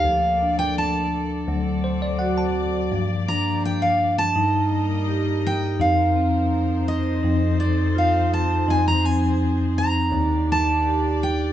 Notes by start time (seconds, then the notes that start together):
Already playing: A#3 G4 F5
0.05 D2 F3 A4 D5
0.41 D4
0.59 G5
0.78 A5
1.47 D2 F#3 C4 D5
1.84 C5
2.02 D5
2.19 F#4 F#5
2.38 A5
2.90 G2 F3 A#3 G4
3.28 D4 A#5
3.65 G5
3.82 F5
4.18 A5
4.36 G2 G3 A#3 D#4 A#4 D#5
5.07 G4
5.46 G5
5.79 F2 F3 C4 D#4 A#4 C5 F5
6.16 C4
6.88 D#5
7.23 F2 D#4 A4
7.60 D5
7.95 F4 F5
8.33 A5
8.68 F2 F3 D#4 G#4 G#5
8.88 A#5
9.04 C4 G#5
9.78 A#5
10.12 D#2 D#3 A#3 D4 D#4 G4 D5
10.52 A5
10.85 G4
11.23 G5